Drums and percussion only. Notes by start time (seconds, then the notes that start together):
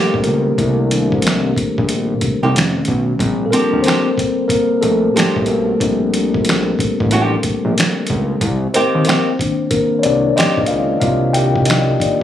0.14 kick
0.24 closed hi-hat
0.58 kick, closed hi-hat
0.91 closed hi-hat
1.12 kick
1.22 closed hi-hat
1.27 finger snap, snare
1.56 kick, closed hi-hat
1.78 kick
1.89 closed hi-hat
2.21 kick, closed hi-hat
2.56 finger snap, snare, closed hi-hat
2.85 kick, closed hi-hat
3.19 kick, closed hi-hat
3.53 closed hi-hat
3.84 closed hi-hat
3.88 finger snap, snare
4.18 kick, closed hi-hat
4.49 kick, closed hi-hat
4.83 closed hi-hat
5.17 finger snap, snare, closed hi-hat
5.36 kick
5.46 closed hi-hat
5.80 kick, closed hi-hat
6.14 closed hi-hat
6.34 kick
6.45 closed hi-hat
6.49 finger snap, snare
6.79 kick, closed hi-hat
7.00 kick
7.11 closed hi-hat
7.43 kick, closed hi-hat
7.78 finger snap, snare, closed hi-hat
8.07 kick, closed hi-hat
8.41 kick, closed hi-hat
8.74 closed hi-hat
9.05 closed hi-hat
9.09 finger snap, snare
9.39 kick, closed hi-hat
9.71 kick, closed hi-hat
10.03 closed hi-hat
10.38 finger snap, snare, closed hi-hat
10.57 kick
10.66 closed hi-hat
11.01 kick, closed hi-hat
11.34 closed hi-hat
11.56 kick
11.65 closed hi-hat
11.70 finger snap, snare
12.00 kick, closed hi-hat